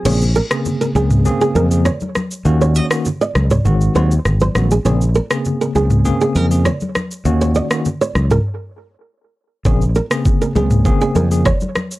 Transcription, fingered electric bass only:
\new Staff \with { instrumentName = "Fingered electric bass" } { \clef bass \time 4/4 \key bes \minor \tempo 4 = 100 bes,,8. r8. des,8. r16 f,8. r8. | ees,8. r8. des,8 aes,,8 ees,8 aes,,8 bes,,8 | bes,,8. r8. des,8. r16 f,8. r8. | ees,8. r8. des,8 r2 |
bes,,8. r8. des,8. r16 f,8. r8. | }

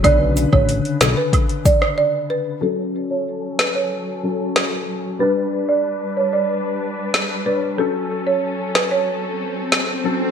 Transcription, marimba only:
\new Staff \with { instrumentName = "Marimba" } { \time 4/4 \key fis \phrygian \tempo 4 = 93 d''8 r16 cis''16 r8 a'16 b'16 r8 d''16 r16 d''16 r16 b'16 r16 | a'16 r8 cis''16 r8 b'16 cis''16 r2 | b'16 r8 d''16 r8 cis''16 d''16 r4. b'16 r16 | a'16 r8 cis''16 r8 b'16 cis''16 r2 | }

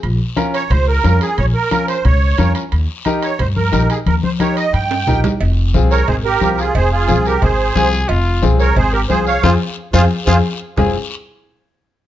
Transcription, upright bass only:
\new Staff \with { instrumentName = "Upright bass" } { \clef bass \time 4/4 \key f \minor \tempo 4 = 179 bes,,8 r4. des,4 f,8 r8 | bes,,8 r4. des,4 f,8 r8 | ees,8 r4. g,4 bes,,8 r8 | ees,8 r4. g,4 bes,,8 r8 |
f,,4 c,4 aes,,4 c,4 | f,,4 c,4 aes,,4 c,4 | f,,4 c,4 aes,,4 c,4 | f,8 r4 f,8 r8 f,8 r4 |
f,,8 r2. r8 | }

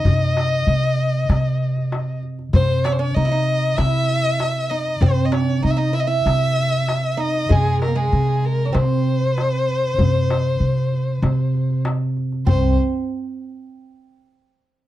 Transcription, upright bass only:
\new Staff \with { instrumentName = "Upright bass" } { \clef bass \time 4/4 \tempo 4 = 97 c4 c4 c2 | c4 c4 c2 | c4 c4 c2 | c4 c4 c2 |
c4 c4 c2 | c,8 r2. r8 | }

